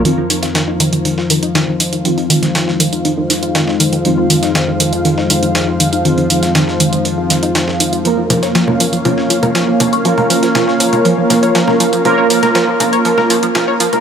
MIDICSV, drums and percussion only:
0, 0, Header, 1, 2, 480
1, 0, Start_track
1, 0, Key_signature, -4, "minor"
1, 0, Tempo, 500000
1, 50, Time_signature, 4, 2, 24, 8
1, 13443, End_track
2, 0, Start_track
2, 0, Title_t, "Drums"
2, 49, Note_on_c, 9, 42, 77
2, 145, Note_off_c, 9, 42, 0
2, 289, Note_on_c, 9, 42, 62
2, 289, Note_on_c, 9, 46, 97
2, 385, Note_off_c, 9, 42, 0
2, 385, Note_off_c, 9, 46, 0
2, 409, Note_on_c, 9, 38, 45
2, 410, Note_on_c, 9, 42, 44
2, 505, Note_off_c, 9, 38, 0
2, 506, Note_off_c, 9, 42, 0
2, 528, Note_on_c, 9, 38, 113
2, 528, Note_on_c, 9, 42, 79
2, 529, Note_off_c, 9, 42, 0
2, 529, Note_on_c, 9, 42, 31
2, 624, Note_off_c, 9, 38, 0
2, 625, Note_off_c, 9, 42, 0
2, 768, Note_on_c, 9, 42, 66
2, 769, Note_on_c, 9, 46, 101
2, 864, Note_off_c, 9, 42, 0
2, 865, Note_off_c, 9, 46, 0
2, 890, Note_on_c, 9, 42, 43
2, 986, Note_off_c, 9, 42, 0
2, 1009, Note_on_c, 9, 42, 83
2, 1010, Note_off_c, 9, 42, 0
2, 1010, Note_on_c, 9, 42, 31
2, 1106, Note_off_c, 9, 42, 0
2, 1130, Note_on_c, 9, 38, 43
2, 1226, Note_off_c, 9, 38, 0
2, 1248, Note_on_c, 9, 46, 100
2, 1250, Note_on_c, 9, 42, 63
2, 1344, Note_off_c, 9, 46, 0
2, 1346, Note_off_c, 9, 42, 0
2, 1370, Note_on_c, 9, 42, 45
2, 1466, Note_off_c, 9, 42, 0
2, 1489, Note_on_c, 9, 42, 31
2, 1490, Note_off_c, 9, 42, 0
2, 1490, Note_on_c, 9, 38, 109
2, 1490, Note_on_c, 9, 42, 84
2, 1586, Note_off_c, 9, 38, 0
2, 1586, Note_off_c, 9, 42, 0
2, 1728, Note_on_c, 9, 46, 95
2, 1729, Note_on_c, 9, 42, 64
2, 1824, Note_off_c, 9, 46, 0
2, 1825, Note_off_c, 9, 42, 0
2, 1850, Note_on_c, 9, 42, 43
2, 1946, Note_off_c, 9, 42, 0
2, 1969, Note_on_c, 9, 42, 34
2, 2065, Note_off_c, 9, 42, 0
2, 2090, Note_on_c, 9, 42, 42
2, 2186, Note_off_c, 9, 42, 0
2, 2209, Note_on_c, 9, 42, 62
2, 2209, Note_on_c, 9, 46, 102
2, 2305, Note_off_c, 9, 42, 0
2, 2305, Note_off_c, 9, 46, 0
2, 2329, Note_on_c, 9, 38, 35
2, 2330, Note_on_c, 9, 42, 41
2, 2425, Note_off_c, 9, 38, 0
2, 2426, Note_off_c, 9, 42, 0
2, 2448, Note_on_c, 9, 42, 31
2, 2449, Note_off_c, 9, 42, 0
2, 2449, Note_on_c, 9, 38, 111
2, 2449, Note_on_c, 9, 42, 84
2, 2545, Note_off_c, 9, 38, 0
2, 2545, Note_off_c, 9, 42, 0
2, 2570, Note_on_c, 9, 38, 35
2, 2666, Note_off_c, 9, 38, 0
2, 2688, Note_on_c, 9, 42, 70
2, 2688, Note_on_c, 9, 46, 112
2, 2784, Note_off_c, 9, 42, 0
2, 2784, Note_off_c, 9, 46, 0
2, 2809, Note_on_c, 9, 42, 42
2, 2905, Note_off_c, 9, 42, 0
2, 2927, Note_on_c, 9, 42, 84
2, 2929, Note_off_c, 9, 42, 0
2, 2929, Note_on_c, 9, 42, 32
2, 3025, Note_off_c, 9, 42, 0
2, 3168, Note_on_c, 9, 38, 35
2, 3168, Note_on_c, 9, 42, 63
2, 3168, Note_on_c, 9, 46, 104
2, 3264, Note_off_c, 9, 38, 0
2, 3264, Note_off_c, 9, 42, 0
2, 3264, Note_off_c, 9, 46, 0
2, 3290, Note_on_c, 9, 42, 43
2, 3386, Note_off_c, 9, 42, 0
2, 3408, Note_on_c, 9, 38, 110
2, 3408, Note_on_c, 9, 42, 86
2, 3409, Note_off_c, 9, 42, 0
2, 3409, Note_on_c, 9, 42, 33
2, 3504, Note_off_c, 9, 38, 0
2, 3505, Note_off_c, 9, 42, 0
2, 3529, Note_on_c, 9, 38, 45
2, 3625, Note_off_c, 9, 38, 0
2, 3648, Note_on_c, 9, 42, 64
2, 3649, Note_on_c, 9, 46, 106
2, 3744, Note_off_c, 9, 42, 0
2, 3745, Note_off_c, 9, 46, 0
2, 3769, Note_on_c, 9, 42, 41
2, 3865, Note_off_c, 9, 42, 0
2, 3888, Note_on_c, 9, 42, 87
2, 3889, Note_off_c, 9, 42, 0
2, 3889, Note_on_c, 9, 42, 31
2, 3985, Note_off_c, 9, 42, 0
2, 4128, Note_on_c, 9, 42, 62
2, 4129, Note_on_c, 9, 46, 104
2, 4224, Note_off_c, 9, 42, 0
2, 4225, Note_off_c, 9, 46, 0
2, 4250, Note_on_c, 9, 38, 44
2, 4250, Note_on_c, 9, 42, 41
2, 4346, Note_off_c, 9, 38, 0
2, 4346, Note_off_c, 9, 42, 0
2, 4369, Note_on_c, 9, 38, 115
2, 4369, Note_on_c, 9, 42, 86
2, 4465, Note_off_c, 9, 38, 0
2, 4465, Note_off_c, 9, 42, 0
2, 4609, Note_on_c, 9, 42, 68
2, 4609, Note_on_c, 9, 46, 108
2, 4705, Note_off_c, 9, 42, 0
2, 4705, Note_off_c, 9, 46, 0
2, 4729, Note_on_c, 9, 42, 39
2, 4825, Note_off_c, 9, 42, 0
2, 4848, Note_on_c, 9, 42, 30
2, 4944, Note_off_c, 9, 42, 0
2, 4970, Note_on_c, 9, 38, 45
2, 5066, Note_off_c, 9, 38, 0
2, 5088, Note_on_c, 9, 42, 65
2, 5088, Note_on_c, 9, 46, 113
2, 5184, Note_off_c, 9, 42, 0
2, 5184, Note_off_c, 9, 46, 0
2, 5210, Note_on_c, 9, 42, 44
2, 5306, Note_off_c, 9, 42, 0
2, 5328, Note_on_c, 9, 38, 110
2, 5328, Note_on_c, 9, 42, 85
2, 5329, Note_off_c, 9, 42, 0
2, 5329, Note_on_c, 9, 42, 31
2, 5424, Note_off_c, 9, 38, 0
2, 5425, Note_off_c, 9, 42, 0
2, 5568, Note_on_c, 9, 42, 65
2, 5569, Note_on_c, 9, 46, 107
2, 5664, Note_off_c, 9, 42, 0
2, 5665, Note_off_c, 9, 46, 0
2, 5690, Note_on_c, 9, 42, 41
2, 5786, Note_off_c, 9, 42, 0
2, 5809, Note_on_c, 9, 42, 80
2, 5810, Note_off_c, 9, 42, 0
2, 5810, Note_on_c, 9, 42, 32
2, 5906, Note_off_c, 9, 42, 0
2, 5930, Note_on_c, 9, 42, 42
2, 6026, Note_off_c, 9, 42, 0
2, 6048, Note_on_c, 9, 42, 66
2, 6049, Note_on_c, 9, 46, 101
2, 6144, Note_off_c, 9, 42, 0
2, 6145, Note_off_c, 9, 46, 0
2, 6169, Note_on_c, 9, 38, 38
2, 6170, Note_on_c, 9, 42, 42
2, 6265, Note_off_c, 9, 38, 0
2, 6266, Note_off_c, 9, 42, 0
2, 6288, Note_on_c, 9, 38, 113
2, 6288, Note_on_c, 9, 42, 83
2, 6289, Note_off_c, 9, 42, 0
2, 6289, Note_on_c, 9, 42, 32
2, 6384, Note_off_c, 9, 38, 0
2, 6385, Note_off_c, 9, 42, 0
2, 6409, Note_on_c, 9, 38, 36
2, 6505, Note_off_c, 9, 38, 0
2, 6529, Note_on_c, 9, 42, 70
2, 6529, Note_on_c, 9, 46, 106
2, 6625, Note_off_c, 9, 42, 0
2, 6625, Note_off_c, 9, 46, 0
2, 6650, Note_on_c, 9, 42, 40
2, 6746, Note_off_c, 9, 42, 0
2, 6769, Note_on_c, 9, 42, 30
2, 6865, Note_off_c, 9, 42, 0
2, 7010, Note_on_c, 9, 38, 36
2, 7010, Note_on_c, 9, 42, 63
2, 7010, Note_on_c, 9, 46, 105
2, 7106, Note_off_c, 9, 38, 0
2, 7106, Note_off_c, 9, 42, 0
2, 7106, Note_off_c, 9, 46, 0
2, 7130, Note_on_c, 9, 42, 43
2, 7226, Note_off_c, 9, 42, 0
2, 7249, Note_on_c, 9, 38, 116
2, 7249, Note_on_c, 9, 42, 89
2, 7250, Note_off_c, 9, 42, 0
2, 7250, Note_on_c, 9, 42, 31
2, 7345, Note_off_c, 9, 38, 0
2, 7346, Note_off_c, 9, 42, 0
2, 7370, Note_on_c, 9, 38, 46
2, 7466, Note_off_c, 9, 38, 0
2, 7489, Note_on_c, 9, 42, 66
2, 7490, Note_on_c, 9, 46, 101
2, 7585, Note_off_c, 9, 42, 0
2, 7586, Note_off_c, 9, 46, 0
2, 7610, Note_on_c, 9, 42, 41
2, 7706, Note_off_c, 9, 42, 0
2, 7729, Note_on_c, 9, 42, 87
2, 7730, Note_off_c, 9, 42, 0
2, 7730, Note_on_c, 9, 42, 33
2, 7826, Note_off_c, 9, 42, 0
2, 7969, Note_on_c, 9, 42, 66
2, 7969, Note_on_c, 9, 46, 103
2, 7969, Note_on_c, 9, 64, 91
2, 8065, Note_off_c, 9, 42, 0
2, 8065, Note_off_c, 9, 46, 0
2, 8065, Note_off_c, 9, 64, 0
2, 8089, Note_on_c, 9, 38, 48
2, 8090, Note_on_c, 9, 42, 42
2, 8185, Note_off_c, 9, 38, 0
2, 8186, Note_off_c, 9, 42, 0
2, 8209, Note_on_c, 9, 38, 118
2, 8209, Note_on_c, 9, 42, 88
2, 8210, Note_off_c, 9, 42, 0
2, 8210, Note_on_c, 9, 42, 32
2, 8305, Note_off_c, 9, 38, 0
2, 8306, Note_off_c, 9, 42, 0
2, 8330, Note_on_c, 9, 64, 88
2, 8426, Note_off_c, 9, 64, 0
2, 8450, Note_on_c, 9, 42, 75
2, 8450, Note_on_c, 9, 46, 107
2, 8546, Note_off_c, 9, 42, 0
2, 8546, Note_off_c, 9, 46, 0
2, 8571, Note_on_c, 9, 42, 41
2, 8667, Note_off_c, 9, 42, 0
2, 8689, Note_on_c, 9, 42, 86
2, 8690, Note_off_c, 9, 42, 0
2, 8690, Note_on_c, 9, 42, 32
2, 8690, Note_on_c, 9, 64, 94
2, 8786, Note_off_c, 9, 42, 0
2, 8786, Note_off_c, 9, 64, 0
2, 8810, Note_on_c, 9, 38, 46
2, 8906, Note_off_c, 9, 38, 0
2, 8929, Note_on_c, 9, 42, 67
2, 8930, Note_on_c, 9, 46, 105
2, 9025, Note_off_c, 9, 42, 0
2, 9026, Note_off_c, 9, 46, 0
2, 9051, Note_on_c, 9, 42, 43
2, 9051, Note_on_c, 9, 64, 97
2, 9147, Note_off_c, 9, 42, 0
2, 9147, Note_off_c, 9, 64, 0
2, 9168, Note_on_c, 9, 38, 114
2, 9168, Note_on_c, 9, 42, 83
2, 9170, Note_off_c, 9, 42, 0
2, 9170, Note_on_c, 9, 42, 31
2, 9264, Note_off_c, 9, 38, 0
2, 9266, Note_off_c, 9, 42, 0
2, 9409, Note_on_c, 9, 42, 66
2, 9409, Note_on_c, 9, 46, 103
2, 9409, Note_on_c, 9, 64, 94
2, 9505, Note_off_c, 9, 42, 0
2, 9505, Note_off_c, 9, 46, 0
2, 9505, Note_off_c, 9, 64, 0
2, 9531, Note_on_c, 9, 42, 39
2, 9627, Note_off_c, 9, 42, 0
2, 9648, Note_on_c, 9, 42, 84
2, 9650, Note_off_c, 9, 42, 0
2, 9650, Note_on_c, 9, 42, 34
2, 9746, Note_off_c, 9, 42, 0
2, 9769, Note_on_c, 9, 42, 43
2, 9771, Note_on_c, 9, 64, 95
2, 9865, Note_off_c, 9, 42, 0
2, 9867, Note_off_c, 9, 64, 0
2, 9889, Note_on_c, 9, 42, 68
2, 9890, Note_on_c, 9, 46, 103
2, 9985, Note_off_c, 9, 42, 0
2, 9986, Note_off_c, 9, 46, 0
2, 10010, Note_on_c, 9, 38, 37
2, 10011, Note_on_c, 9, 42, 44
2, 10106, Note_off_c, 9, 38, 0
2, 10107, Note_off_c, 9, 42, 0
2, 10128, Note_on_c, 9, 38, 120
2, 10128, Note_on_c, 9, 42, 88
2, 10130, Note_off_c, 9, 42, 0
2, 10130, Note_on_c, 9, 42, 31
2, 10130, Note_on_c, 9, 64, 96
2, 10224, Note_off_c, 9, 38, 0
2, 10226, Note_off_c, 9, 42, 0
2, 10226, Note_off_c, 9, 64, 0
2, 10249, Note_on_c, 9, 38, 37
2, 10345, Note_off_c, 9, 38, 0
2, 10369, Note_on_c, 9, 42, 74
2, 10370, Note_on_c, 9, 46, 100
2, 10465, Note_off_c, 9, 42, 0
2, 10466, Note_off_c, 9, 46, 0
2, 10491, Note_on_c, 9, 42, 43
2, 10491, Note_on_c, 9, 64, 97
2, 10587, Note_off_c, 9, 42, 0
2, 10587, Note_off_c, 9, 64, 0
2, 10609, Note_on_c, 9, 42, 89
2, 10611, Note_off_c, 9, 42, 0
2, 10611, Note_on_c, 9, 42, 32
2, 10707, Note_off_c, 9, 42, 0
2, 10849, Note_on_c, 9, 38, 37
2, 10849, Note_on_c, 9, 42, 66
2, 10850, Note_on_c, 9, 46, 100
2, 10850, Note_on_c, 9, 64, 95
2, 10945, Note_off_c, 9, 38, 0
2, 10945, Note_off_c, 9, 42, 0
2, 10946, Note_off_c, 9, 46, 0
2, 10946, Note_off_c, 9, 64, 0
2, 10971, Note_on_c, 9, 42, 43
2, 11067, Note_off_c, 9, 42, 0
2, 11088, Note_on_c, 9, 38, 117
2, 11088, Note_on_c, 9, 42, 89
2, 11091, Note_off_c, 9, 42, 0
2, 11091, Note_on_c, 9, 42, 32
2, 11184, Note_off_c, 9, 38, 0
2, 11187, Note_off_c, 9, 42, 0
2, 11209, Note_on_c, 9, 38, 46
2, 11211, Note_on_c, 9, 64, 91
2, 11305, Note_off_c, 9, 38, 0
2, 11307, Note_off_c, 9, 64, 0
2, 11329, Note_on_c, 9, 42, 69
2, 11330, Note_on_c, 9, 46, 97
2, 11425, Note_off_c, 9, 42, 0
2, 11426, Note_off_c, 9, 46, 0
2, 11451, Note_on_c, 9, 42, 40
2, 11547, Note_off_c, 9, 42, 0
2, 11569, Note_on_c, 9, 42, 90
2, 11570, Note_off_c, 9, 42, 0
2, 11570, Note_on_c, 9, 42, 34
2, 11570, Note_on_c, 9, 64, 97
2, 11666, Note_off_c, 9, 42, 0
2, 11666, Note_off_c, 9, 64, 0
2, 11809, Note_on_c, 9, 42, 69
2, 11810, Note_on_c, 9, 46, 104
2, 11905, Note_off_c, 9, 42, 0
2, 11906, Note_off_c, 9, 46, 0
2, 11930, Note_on_c, 9, 38, 49
2, 11931, Note_on_c, 9, 42, 47
2, 11931, Note_on_c, 9, 64, 93
2, 12026, Note_off_c, 9, 38, 0
2, 12027, Note_off_c, 9, 42, 0
2, 12027, Note_off_c, 9, 64, 0
2, 12049, Note_on_c, 9, 38, 117
2, 12049, Note_on_c, 9, 42, 87
2, 12050, Note_off_c, 9, 42, 0
2, 12050, Note_on_c, 9, 42, 34
2, 12145, Note_off_c, 9, 38, 0
2, 12146, Note_off_c, 9, 42, 0
2, 12289, Note_on_c, 9, 42, 70
2, 12290, Note_on_c, 9, 46, 105
2, 12290, Note_on_c, 9, 64, 101
2, 12385, Note_off_c, 9, 42, 0
2, 12386, Note_off_c, 9, 46, 0
2, 12386, Note_off_c, 9, 64, 0
2, 12411, Note_on_c, 9, 42, 43
2, 12507, Note_off_c, 9, 42, 0
2, 12528, Note_on_c, 9, 42, 90
2, 12530, Note_off_c, 9, 42, 0
2, 12530, Note_on_c, 9, 42, 32
2, 12626, Note_off_c, 9, 42, 0
2, 12650, Note_on_c, 9, 38, 47
2, 12650, Note_on_c, 9, 64, 99
2, 12746, Note_off_c, 9, 38, 0
2, 12746, Note_off_c, 9, 64, 0
2, 12768, Note_on_c, 9, 42, 65
2, 12770, Note_on_c, 9, 46, 102
2, 12864, Note_off_c, 9, 42, 0
2, 12866, Note_off_c, 9, 46, 0
2, 12890, Note_on_c, 9, 42, 47
2, 12986, Note_off_c, 9, 42, 0
2, 13008, Note_on_c, 9, 38, 123
2, 13008, Note_on_c, 9, 42, 89
2, 13010, Note_off_c, 9, 42, 0
2, 13010, Note_on_c, 9, 42, 35
2, 13010, Note_on_c, 9, 64, 97
2, 13104, Note_off_c, 9, 38, 0
2, 13106, Note_off_c, 9, 42, 0
2, 13106, Note_off_c, 9, 64, 0
2, 13249, Note_on_c, 9, 42, 69
2, 13250, Note_on_c, 9, 46, 100
2, 13345, Note_off_c, 9, 42, 0
2, 13346, Note_off_c, 9, 46, 0
2, 13371, Note_on_c, 9, 42, 41
2, 13371, Note_on_c, 9, 64, 87
2, 13443, Note_off_c, 9, 42, 0
2, 13443, Note_off_c, 9, 64, 0
2, 13443, End_track
0, 0, End_of_file